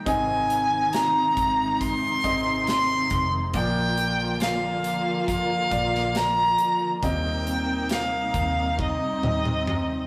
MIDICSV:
0, 0, Header, 1, 6, 480
1, 0, Start_track
1, 0, Key_signature, -3, "major"
1, 0, Tempo, 870827
1, 32, Time_signature, 4, 2, 24, 8
1, 3392, Tempo, 883652
1, 5519, End_track
2, 0, Start_track
2, 0, Title_t, "Violin"
2, 0, Program_c, 0, 40
2, 40, Note_on_c, 0, 80, 110
2, 513, Note_on_c, 0, 82, 96
2, 521, Note_off_c, 0, 80, 0
2, 995, Note_on_c, 0, 84, 114
2, 1004, Note_off_c, 0, 82, 0
2, 1473, Note_off_c, 0, 84, 0
2, 1480, Note_on_c, 0, 84, 104
2, 1813, Note_off_c, 0, 84, 0
2, 1955, Note_on_c, 0, 79, 112
2, 2432, Note_on_c, 0, 77, 91
2, 2440, Note_off_c, 0, 79, 0
2, 2910, Note_off_c, 0, 77, 0
2, 2913, Note_on_c, 0, 77, 107
2, 3396, Note_on_c, 0, 82, 103
2, 3404, Note_off_c, 0, 77, 0
2, 3751, Note_off_c, 0, 82, 0
2, 3874, Note_on_c, 0, 79, 101
2, 4355, Note_on_c, 0, 77, 84
2, 4363, Note_off_c, 0, 79, 0
2, 4829, Note_off_c, 0, 77, 0
2, 4834, Note_on_c, 0, 75, 90
2, 5519, Note_off_c, 0, 75, 0
2, 5519, End_track
3, 0, Start_track
3, 0, Title_t, "Grand piano"
3, 0, Program_c, 1, 0
3, 0, Control_c, 1, 64, 127
3, 30, Note_on_c, 1, 60, 74
3, 32, Note_on_c, 1, 44, 63
3, 33, Note_on_c, 1, 51, 61
3, 33, Note_on_c, 1, 68, 63
3, 36, Note_on_c, 1, 75, 84
3, 39, Control_c, 1, 64, 0
3, 140, Control_c, 1, 64, 127
3, 731, Note_off_c, 1, 44, 0
3, 731, Note_off_c, 1, 51, 0
3, 944, Note_off_c, 1, 60, 0
3, 945, Note_off_c, 1, 68, 0
3, 947, Note_off_c, 1, 75, 0
3, 1233, Note_on_c, 1, 60, 71
3, 1235, Note_on_c, 1, 68, 63
3, 1237, Note_on_c, 1, 75, 76
3, 1915, Note_off_c, 1, 60, 0
3, 1916, Note_off_c, 1, 68, 0
3, 1917, Note_off_c, 1, 75, 0
3, 1951, Note_on_c, 1, 58, 70
3, 1952, Note_on_c, 1, 65, 73
3, 1953, Note_on_c, 1, 53, 63
3, 1954, Note_on_c, 1, 46, 67
3, 1956, Note_on_c, 1, 74, 83
3, 1958, Control_c, 1, 64, 0
3, 2038, Control_c, 1, 64, 127
3, 2649, Note_off_c, 1, 46, 0
3, 2649, Note_off_c, 1, 53, 0
3, 2862, Note_off_c, 1, 58, 0
3, 2862, Note_off_c, 1, 65, 0
3, 2864, Note_off_c, 1, 74, 0
3, 3143, Note_on_c, 1, 65, 62
3, 3145, Note_on_c, 1, 58, 67
3, 3146, Note_on_c, 1, 74, 77
3, 3829, Note_off_c, 1, 65, 0
3, 3830, Note_off_c, 1, 58, 0
3, 3831, Note_off_c, 1, 74, 0
3, 3866, Note_on_c, 1, 60, 69
3, 3868, Note_on_c, 1, 46, 61
3, 3868, Note_on_c, 1, 67, 68
3, 3870, Note_on_c, 1, 75, 76
3, 3875, Control_c, 1, 64, 0
3, 3979, Control_c, 1, 64, 127
3, 4561, Note_off_c, 1, 46, 0
3, 4774, Note_off_c, 1, 60, 0
3, 4776, Note_off_c, 1, 67, 0
3, 4776, Note_off_c, 1, 75, 0
3, 5064, Note_on_c, 1, 60, 63
3, 5066, Note_on_c, 1, 67, 60
3, 5067, Note_on_c, 1, 75, 70
3, 5519, Note_off_c, 1, 60, 0
3, 5519, Note_off_c, 1, 67, 0
3, 5519, Note_off_c, 1, 75, 0
3, 5519, End_track
4, 0, Start_track
4, 0, Title_t, "String section"
4, 0, Program_c, 2, 48
4, 0, Note_on_c, 2, 51, 74
4, 40, Note_on_c, 2, 48, 83
4, 40, Note_on_c, 2, 56, 68
4, 42, Note_on_c, 2, 63, 81
4, 1930, Note_off_c, 2, 51, 0
4, 1935, Note_off_c, 2, 48, 0
4, 1936, Note_off_c, 2, 56, 0
4, 1936, Note_off_c, 2, 63, 0
4, 1957, Note_on_c, 2, 50, 81
4, 1957, Note_on_c, 2, 58, 75
4, 1958, Note_on_c, 2, 53, 75
4, 1958, Note_on_c, 2, 65, 85
4, 3852, Note_off_c, 2, 50, 0
4, 3853, Note_off_c, 2, 53, 0
4, 3853, Note_off_c, 2, 58, 0
4, 3853, Note_off_c, 2, 65, 0
4, 3871, Note_on_c, 2, 55, 68
4, 3871, Note_on_c, 2, 63, 84
4, 3872, Note_on_c, 2, 58, 74
4, 3874, Note_on_c, 2, 48, 75
4, 4816, Note_off_c, 2, 58, 0
4, 4826, Note_on_c, 2, 60, 65
4, 5519, Note_off_c, 2, 48, 0
4, 5519, Note_off_c, 2, 55, 0
4, 5519, Note_off_c, 2, 60, 0
4, 5519, Note_off_c, 2, 63, 0
4, 5519, End_track
5, 0, Start_track
5, 0, Title_t, "Fingered electric bass"
5, 0, Program_c, 3, 33
5, 33, Note_on_c, 3, 32, 88
5, 731, Note_off_c, 3, 32, 0
5, 755, Note_on_c, 3, 32, 93
5, 1092, Note_off_c, 3, 32, 0
5, 1234, Note_on_c, 3, 32, 84
5, 1690, Note_off_c, 3, 32, 0
5, 1714, Note_on_c, 3, 29, 82
5, 1935, Note_off_c, 3, 29, 0
5, 1951, Note_on_c, 3, 34, 96
5, 3128, Note_off_c, 3, 34, 0
5, 3149, Note_on_c, 3, 34, 88
5, 3608, Note_off_c, 3, 34, 0
5, 3863, Note_on_c, 3, 39, 87
5, 4559, Note_off_c, 3, 39, 0
5, 4581, Note_on_c, 3, 39, 87
5, 4922, Note_off_c, 3, 39, 0
5, 5063, Note_on_c, 3, 39, 77
5, 5519, Note_off_c, 3, 39, 0
5, 5519, End_track
6, 0, Start_track
6, 0, Title_t, "Drums"
6, 35, Note_on_c, 9, 36, 101
6, 37, Note_on_c, 9, 42, 85
6, 90, Note_off_c, 9, 36, 0
6, 92, Note_off_c, 9, 42, 0
6, 276, Note_on_c, 9, 42, 62
6, 331, Note_off_c, 9, 42, 0
6, 512, Note_on_c, 9, 42, 89
6, 521, Note_on_c, 9, 38, 108
6, 567, Note_off_c, 9, 42, 0
6, 576, Note_off_c, 9, 38, 0
6, 755, Note_on_c, 9, 36, 81
6, 755, Note_on_c, 9, 42, 69
6, 810, Note_off_c, 9, 36, 0
6, 811, Note_off_c, 9, 42, 0
6, 997, Note_on_c, 9, 36, 90
6, 998, Note_on_c, 9, 42, 92
6, 1052, Note_off_c, 9, 36, 0
6, 1053, Note_off_c, 9, 42, 0
6, 1235, Note_on_c, 9, 36, 81
6, 1235, Note_on_c, 9, 42, 55
6, 1290, Note_off_c, 9, 42, 0
6, 1291, Note_off_c, 9, 36, 0
6, 1473, Note_on_c, 9, 42, 80
6, 1479, Note_on_c, 9, 38, 105
6, 1529, Note_off_c, 9, 42, 0
6, 1535, Note_off_c, 9, 38, 0
6, 1710, Note_on_c, 9, 42, 64
6, 1714, Note_on_c, 9, 36, 92
6, 1765, Note_off_c, 9, 42, 0
6, 1769, Note_off_c, 9, 36, 0
6, 1949, Note_on_c, 9, 42, 85
6, 1951, Note_on_c, 9, 36, 96
6, 2004, Note_off_c, 9, 42, 0
6, 2006, Note_off_c, 9, 36, 0
6, 2191, Note_on_c, 9, 42, 66
6, 2247, Note_off_c, 9, 42, 0
6, 2426, Note_on_c, 9, 42, 85
6, 2436, Note_on_c, 9, 38, 107
6, 2482, Note_off_c, 9, 42, 0
6, 2491, Note_off_c, 9, 38, 0
6, 2669, Note_on_c, 9, 42, 72
6, 2724, Note_off_c, 9, 42, 0
6, 2911, Note_on_c, 9, 36, 85
6, 2913, Note_on_c, 9, 42, 85
6, 2966, Note_off_c, 9, 36, 0
6, 2968, Note_off_c, 9, 42, 0
6, 3150, Note_on_c, 9, 36, 82
6, 3150, Note_on_c, 9, 42, 55
6, 3205, Note_off_c, 9, 36, 0
6, 3205, Note_off_c, 9, 42, 0
6, 3279, Note_on_c, 9, 38, 33
6, 3334, Note_off_c, 9, 38, 0
6, 3389, Note_on_c, 9, 42, 82
6, 3395, Note_on_c, 9, 38, 107
6, 3444, Note_off_c, 9, 42, 0
6, 3450, Note_off_c, 9, 38, 0
6, 3625, Note_on_c, 9, 42, 69
6, 3680, Note_off_c, 9, 42, 0
6, 3866, Note_on_c, 9, 36, 94
6, 3866, Note_on_c, 9, 42, 87
6, 3920, Note_off_c, 9, 36, 0
6, 3920, Note_off_c, 9, 42, 0
6, 4106, Note_on_c, 9, 42, 66
6, 4160, Note_off_c, 9, 42, 0
6, 4337, Note_on_c, 9, 42, 89
6, 4346, Note_on_c, 9, 38, 100
6, 4392, Note_off_c, 9, 42, 0
6, 4401, Note_off_c, 9, 38, 0
6, 4580, Note_on_c, 9, 36, 83
6, 4580, Note_on_c, 9, 42, 66
6, 4634, Note_off_c, 9, 36, 0
6, 4634, Note_off_c, 9, 42, 0
6, 4821, Note_on_c, 9, 48, 50
6, 4823, Note_on_c, 9, 36, 84
6, 4876, Note_off_c, 9, 48, 0
6, 4877, Note_off_c, 9, 36, 0
6, 5065, Note_on_c, 9, 47, 71
6, 5119, Note_off_c, 9, 47, 0
6, 5184, Note_on_c, 9, 47, 62
6, 5239, Note_off_c, 9, 47, 0
6, 5304, Note_on_c, 9, 45, 82
6, 5359, Note_off_c, 9, 45, 0
6, 5519, End_track
0, 0, End_of_file